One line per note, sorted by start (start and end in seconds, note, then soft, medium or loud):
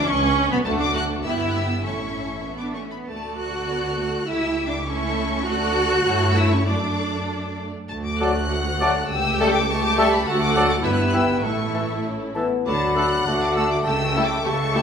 0.07 0.50 C#2 loud
0.07 0.51 C#4 loud
0.07 0.51 C#6 loud
0.49 0.57 B1 loud
0.49 0.64 B3 loud
0.49 0.56 B3 loud
0.49 0.66 B3 loud
0.49 0.57 B5 loud
0.65 1.20 D2 medium
0.65 0.79 A3 loud
0.65 1.20 A3 medium
0.65 1.20 D4 medium
0.65 1.20 F#4 loud
0.65 1.20 A4 loud
0.65 0.71 A5 loud
0.79 0.85 D4 loud
0.79 0.95 D6 loud
0.94 1.02 F#4 loud
0.94 1.04 F#6 loud
1.23 1.84 G1 loud
1.23 1.85 B3 medium
1.23 1.83 E4 loud
1.23 1.82 E4 medium
1.23 1.83 G4 medium
1.23 1.82 E5 medium
1.23 1.32 E6 loud
1.32 1.40 F#6 loud
1.41 1.49 E6 loud
1.50 1.57 F#6 medium
1.57 1.85 E6 loud
1.83 2.86 A1 medium
1.83 2.38 A3 medium
1.83 2.45 C#4 medium
1.83 2.38 E4 medium
1.83 2.86 A4 medium
1.83 2.84 E5 medium
1.83 2.45 C#6 loud
2.46 2.74 B3 medium
2.60 2.75 D4 medium
2.60 2.66 D6 medium
2.75 3.06 A3 medium
2.75 2.92 C#4 medium
2.75 2.81 C#6 medium
2.91 3.07 B3 medium
2.91 2.98 B5 medium
3.07 4.24 D2 medium
3.07 3.65 A3 medium
3.07 3.39 A3 medium
3.07 4.24 F#4 medium
3.07 4.24 A4 medium
3.07 4.24 D5 medium
3.07 3.38 A5 loud
3.38 4.26 F#4 medium
3.38 4.26 F#6 loud
3.69 3.98 B3 medium
3.97 4.26 A3 medium
4.27 5.48 C#2 medium
4.27 4.85 A3 medium
4.27 4.86 E4 medium
4.27 4.67 E4 loud
4.27 4.87 G4 medium
4.27 4.87 E5 medium
4.27 4.67 E6 loud
4.67 4.75 D4 medium
4.67 4.86 D6 loud
4.85 5.47 A3 loud
4.85 5.47 C#4 loud
4.85 5.47 E4 medium
4.85 5.47 A4 medium
4.85 5.47 E5 medium
4.85 5.47 C#6 loud
5.46 6.03 D2 loud
5.46 6.03 A3 loud
5.46 6.37 F#4 loud
5.46 6.03 F#4 loud
5.46 6.03 A4 loud
5.46 6.03 D5 loud
5.46 6.36 F#6 loud
6.07 6.66 G2 loud
6.07 6.67 A3 loud
6.07 6.68 E4 loud
6.07 6.66 A4 loud
6.07 6.68 C#5 loud
6.36 6.52 E4 loud
6.36 6.52 E6 loud
6.51 6.67 C#4 loud
6.51 6.67 C#6 loud
6.66 7.70 F#2 medium
6.66 7.69 A3 medium
6.66 7.58 D4 medium
6.66 7.71 D4 medium
6.66 7.68 A4 medium
6.66 7.70 D5 medium
6.66 7.58 D6 loud
7.89 9.08 D2 medium
7.89 9.08 A3 medium
7.89 9.08 F#4 medium
7.89 7.96 A5 loud
8.05 8.21 D6 loud
8.20 8.32 F#3 medium
8.20 8.32 A3 loud
8.20 8.32 F#4 loud
8.20 8.31 A4 loud
8.20 8.32 D5 medium
8.20 8.35 A5 medium
8.20 9.11 F#6 loud
8.51 9.07 F#5 loud
8.80 8.92 F#3 loud
8.80 8.91 A3 loud
8.80 8.92 F#4 loud
8.80 8.92 A4 medium
8.80 8.91 D5 loud
8.80 8.92 D5 medium
8.80 8.96 A5 loud
9.10 10.28 C#2 loud
9.10 9.69 A3 loud
9.10 9.69 G4 loud
9.10 9.69 G5 loud
9.10 9.49 E6 loud
9.40 9.51 G3 loud
9.40 9.51 A3 loud
9.40 9.51 G4 loud
9.40 9.51 A4 loud
9.40 9.51 E5 loud
9.40 9.55 A5 loud
9.51 9.70 D6 loud
9.70 10.27 A3 loud
9.70 10.27 G4 loud
9.70 10.27 A5 loud
9.70 9.85 C#6 loud
9.85 9.99 D6 loud
9.98 10.08 G3 loud
9.98 10.08 A3 loud
9.98 10.08 G4 loud
9.98 10.08 A4 loud
9.98 10.09 A4 loud
9.98 10.08 E5 loud
9.98 10.12 A5 loud
9.98 10.12 C#6 loud
10.13 10.28 B5 loud
10.27 10.81 D2 loud
10.27 10.82 D2 loud
10.27 10.81 A3 loud
10.27 10.82 A3 loud
10.27 10.81 F#4 loud
10.27 10.82 F#4 loud
10.27 10.81 A4 loud
10.27 10.84 F#5 loud
10.27 10.42 A5 loud
10.42 10.56 D6 loud
10.55 10.66 F#3 medium
10.55 10.67 A4 loud
10.55 10.66 D5 loud
10.55 10.70 A5 medium
10.55 10.61 F#6 loud
10.70 10.76 D6 loud
10.85 11.44 G1 loud
10.85 11.44 G2 medium
10.85 11.44 G3 medium
10.85 11.44 B3 medium
10.85 11.43 E4 loud
10.85 11.43 E4 medium
10.85 11.44 B4 loud
10.85 11.14 E5 loud
10.85 10.93 E6 loud
10.92 11.01 F#6 loud
11.01 11.09 E6 loud
11.09 11.17 F#6 loud
11.14 11.24 E3 medium
11.14 11.24 B4 medium
11.14 11.24 E5 medium
11.14 11.44 G5 loud
11.14 11.28 G5 medium
11.14 11.43 E6 loud
11.44 12.46 A1 medium
11.44 12.46 A2 medium
11.44 11.99 A3 medium
11.44 12.46 A3 medium
11.44 11.97 E4 medium
11.44 12.44 E4 medium
11.44 12.35 A4 medium
11.44 12.36 E5 medium
11.44 12.04 C#6 loud
11.74 11.85 E3 medium
11.74 11.84 A4 medium
11.74 11.85 E5 medium
11.74 11.88 A5 medium
12.05 12.34 C#4 medium
12.35 12.47 E3 medium
12.35 12.65 B3 medium
12.35 12.46 A4 medium
12.35 12.46 E5 medium
12.35 12.50 A5 medium
12.65 13.19 D2 medium
12.65 13.20 D3 loud
12.65 13.29 F#3 medium
12.65 12.75 A3 medium
12.65 13.23 F#4 medium
12.65 12.75 F#4 medium
12.65 13.23 D5 medium
12.65 13.82 F#5 loud
12.65 12.95 A5 loud
12.65 13.28 B5 medium
12.95 13.06 A3 medium
12.95 13.05 A3 medium
12.95 13.06 D4 medium
12.95 13.05 F#4 medium
12.95 13.07 A4 medium
12.95 13.41 F#6 loud
13.26 13.79 D2 medium
13.26 13.80 D3 medium
13.26 13.35 A3 medium
13.26 14.45 A3 medium
13.26 13.88 F#4 medium
13.26 13.35 F#4 medium
13.26 13.88 D5 medium
13.26 13.86 A5 medium
13.42 13.57 D6 loud
13.56 13.67 A3 medium
13.56 13.65 A3 medium
13.56 13.67 D4 loud
13.56 13.65 F#4 medium
13.56 13.67 A4 medium
13.56 13.71 E6 loud
13.71 13.77 D6 loud
13.85 14.38 C#2 loud
13.85 14.38 C#3 loud
13.85 13.95 A3 medium
13.85 13.95 G4 medium
13.85 14.43 A4 medium
13.85 14.45 E5 medium
13.85 14.44 G5 loud
13.85 14.44 A5 medium
13.85 14.24 E6 loud
14.15 14.26 G3 loud
14.15 14.24 A3 medium
14.15 14.27 E4 loud
14.15 14.24 G4 medium
14.15 14.26 A4 loud
14.25 14.45 D6 loud
14.44 14.82 C#2 loud
14.44 14.82 C#3 loud
14.44 14.53 A3 loud
14.44 14.82 A3 medium
14.44 14.53 G4 medium
14.44 14.82 A4 loud
14.44 14.82 E5 medium
14.44 14.82 A5 loud
14.44 14.82 A5 medium
14.44 14.82 C#6 loud
14.73 14.82 G3 loud
14.73 14.82 A3 medium
14.73 14.82 E4 loud
14.73 14.82 G4 loud
14.73 14.82 A4 loud